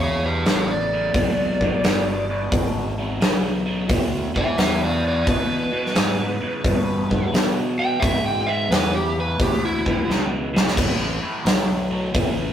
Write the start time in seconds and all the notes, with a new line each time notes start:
Already playing: E2 B2
0.03 G#4 C#5
0.24 E2 B2 G4 B4
0.45 A1 E2 C#3, snare, open hi-hat
0.50 G4 B4
0.71 D5
0.92 E2 C#3
1.14 B1 E2 B2, kick, open hi-hat
1.61 E2 B2, kick
1.83 G1 E2 B2, snare, open hi-hat
2.29 E2 B2
2.50 G#1 E2 B2, kick, open hi-hat
2.98 E2 B2
3.21 B1 E2 C#3, snare, open hi-hat
3.65 E2 C#3
3.87 D2 E2 B2, kick, open hi-hat
4.34 E2 B2 B4, muted fingered electric bass stroke, kick
4.38 E5
4.56 E2 B2, snare, open hi-hat
4.60 B4 E5
4.83 B4 D5
5.02 E2 B2
5.07 B4 D5
5.24 E2 B2, kick, open hi-hat
5.30 B4
5.71 E2 B2
5.86 snare
5.94 E2 G#2 C#3, snare, open hi-hat
6.41 E2 C#3, muted fingered electric bass stroke
6.64 E2 G2 B2, kick, open hi-hat
7.09 E2 B2, kick
7.32 E2 B2, snare, open hi-hat
7.78 E2 B2 G5
8.00 E2 G#2 B2 E5, kick, open hi-hat
8.26 G5
8.47 E2 B2 E5
8.70 E2 C#3 B4, snare, open hi-hat
8.95 G4
9.18 E2 C#3 B4
9.40 D2 E2 B2 G4, kick, open hi-hat
9.65 E4
9.85 E2 B2, kick
10.07 C#2 E2 B2, snare
10.54 E2 B2, snare
10.68 snare
10.76 A1 A2 E3, kick, open hi-hat, crash
11.23 A2 E3, muted fingered electric bass stroke
11.44 B1 A2 F#3, snare, open hi-hat
11.90 A2 F#3
12.14 A1 A2 E3, kick, open hi-hat